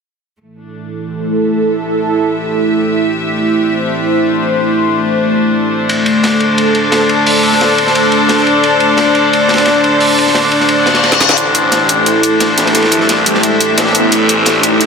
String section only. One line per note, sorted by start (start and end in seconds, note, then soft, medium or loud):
0.41 11.38 A3 medium
0.58 14.86 D4 loud
1.01 6.50 G4 medium
1.11 14.86 C5 medium
1.37 6.00 E5 medium
5.89 12.48 D5 medium
6.40 12.38 A4 medium
11.63 14.86 G4 medium
12.28 14.86 E5 medium